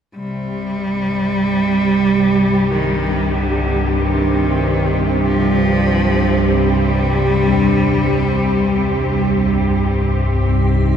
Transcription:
0.15 synth drone C2 G2, cello section C3, cello G3
1.34 cello section G4
2.72 cello D#3
3.04 kettle gongs D4
3.35 cello D3
3.99 cello D#3
4.04 cello section C4
5.26 cello F3
6.52 cello G3
7.50 kettle gongs D#2
10.26 ambient pad D#4

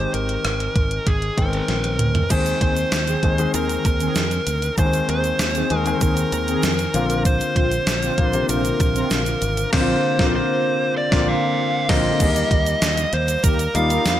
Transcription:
Already playing: grand piano D#3 G#3 C4 G4, lead electric guitar C5
0.14 fingered electric bass G#1, lead electric guitar A#4, closed hi-hat
0.29 closed hi-hat
0.45 fingered electric bass G#1, cross-stick, closed hi-hat
0.60 closed hi-hat
0.76 fingered electric bass G#1, kick, closed hi-hat
0.91 closed hi-hat
1.07 fingered electric bass G#1, lead electric guitar G#4, kick, closed hi-hat
1.22 closed hi-hat
1.37 fingered electric bass G#1, grand piano D#3 G#3 B3 G5, lead electric guitar A#4, kick, closed hi-hat
1.44 grand piano C4
1.53 closed hi-hat
1.68 fingered electric bass A#1, snare, closed hi-hat
1.84 closed hi-hat
1.99 fingered electric bass D2, closed hi-hat, mid tom
2.15 closed hi-hat, floor tom
2.30 fingered electric bass D#2, grand piano D#3 G#3 C4 G#4, lead electric guitar C5, kick, closed hi-hat, crash, shaker
2.46 closed hi-hat, shaker
2.61 fingered electric bass D#2, analog polysynth D#3 C4 G#4, lead electric guitar C5, kick, closed hi-hat
2.77 closed hi-hat, shaker
2.92 fingered electric bass D#2, snare, closed hi-hat, shaker
3.07 analog polysynth D#3 C4 G#4, closed hi-hat, shaker
3.23 fingered electric bass D#2, grand piano D#3 G#3 C4 G#4, kick, closed hi-hat
3.38 grand piano D#3 G#3 C4 G#4, closed hi-hat, shaker
3.54 fingered electric bass D#2, analog polysynth D#3 C4 G#4, lead electric guitar A#4, closed hi-hat, shaker
3.69 closed hi-hat, shaker
3.85 fingered electric bass D#2, lead electric guitar A#4, kick, closed hi-hat, shaker
4.00 analog polysynth D#3 C4 G#4, closed hi-hat, shaker
4.16 fingered electric bass F2, snare, closed hi-hat, shaker
4.31 closed hi-hat, shaker
4.47 fingered electric bass D2, closed hi-hat, shaker
4.62 closed hi-hat, shaker
4.77 fingered electric bass D#2, grand piano D#3 G#3 A#3 G#4, lead electric guitar C5, kick, closed hi-hat, shaker
4.85 grand piano C4
4.93 closed hi-hat, shaker
5.09 fingered electric bass D#2, analog polysynth D#3 C4 G#4, lead electric guitar C5, closed hi-hat
5.24 closed hi-hat, shaker
5.39 fingered electric bass D#2, snare, closed hi-hat, shaker
5.55 analog polysynth D#3 C4 G#4, closed hi-hat, shaker
5.70 fingered electric bass D#2, grand piano D#3 G#3 C4 G#4, closed hi-hat
5.78 lead electric guitar A#4
5.86 grand piano D#3 G#3 C4 G#4, closed hi-hat, shaker
6.01 fingered electric bass D#2, analog polysynth D#3 C4 G#4, lead electric guitar A#4, kick, closed hi-hat, shaker
6.17 closed hi-hat, shaker
6.32 fingered electric bass D#2, lead electric guitar A#4, closed hi-hat, shaker
6.48 analog polysynth D#3 C4 G#4, closed hi-hat, shaker
6.63 fingered electric bass F2, snare, closed hi-hat, shaker
6.79 closed hi-hat, shaker
6.94 fingered electric bass A#1, grand piano D3 A#3 C4 F4, closed hi-hat, shaker
7.10 closed hi-hat, shaker
7.25 lead electric guitar C5, kick, closed hi-hat, shaker
7.41 closed hi-hat, shaker
7.56 fingered electric bass A#1, analog polysynth D3 C4 F4, lead electric guitar C5, kick, closed hi-hat
7.71 closed hi-hat, shaker
7.87 fingered electric bass A#1, snare, closed hi-hat, shaker
8.03 analog polysynth D3 C4 F4, closed hi-hat, shaker
8.18 fingered electric bass A#1, grand piano D3 A#3 C4 F4, kick, closed hi-hat
8.33 grand piano C3 A#3 C4 F4, closed hi-hat, shaker
8.40 grand piano D3
8.49 fingered electric bass A#1, analog polysynth D3 C4 F4, lead electric guitar A#4, closed hi-hat, shaker
8.65 closed hi-hat, shaker
8.80 fingered electric bass A#1, lead electric guitar A#4, kick, closed hi-hat, shaker
8.95 analog polysynth D3 C4 F4, closed hi-hat, shaker
9.11 fingered electric bass A#1, snare, closed hi-hat, shaker
9.26 closed hi-hat, shaker
9.42 fingered electric bass G#1, closed hi-hat, shaker
9.57 closed hi-hat, shaker
9.72 fingered electric bass A#1, grand piano D3 A#3 C4, analog polysynth D3 C4 F4, lead electric guitar C5, kick, snare, crash
9.80 grand piano F4
10.19 fingered electric bass A#1, grand piano D3 A#3 C4, analog polysynth D3 C4 F4, kick, snare
10.26 grand piano F4
10.36 lead electric guitar C5
10.97 lead electric guitar D5
11.11 fingered electric bass A#1, grand piano D3 A#3 C4, analog polysynth D3 C4 F4, kick, snare
11.28 lead electric guitar F5
11.89 fingered electric bass A#1, grand piano D3 A#3 C4, analog polysynth D3 C4 F4, lead electric guitar D#5, kick, snare, crash
12.20 fingered electric bass D#2, grand piano G3 A#3 D#4 G#4, kick, closed hi-hat, crash, shaker
12.27 grand piano A#4
12.36 closed hi-hat, shaker
12.51 fingered electric bass D#2, kick, closed hi-hat
12.66 closed hi-hat, shaker
12.82 fingered electric bass D#2, snare, closed hi-hat, tambourine, shaker
12.97 closed hi-hat, shaker
13.13 fingered electric bass D#2, lead electric guitar C5, closed hi-hat
13.28 closed hi-hat, shaker
13.44 fingered electric bass D#2, analog polysynth D#3 A#3 G4, lead electric guitar A#4, kick, closed hi-hat, shaker
13.59 closed hi-hat, shaker
13.74 fingered electric bass D#2, grand piano G3 A#3 D#4 F4, lead electric guitar F5, closed hi-hat, shaker
13.90 analog polysynth G3 D#4 A#4, closed hi-hat, shaker
14.05 fingered electric bass F2, snare, closed hi-hat, tambourine, shaker

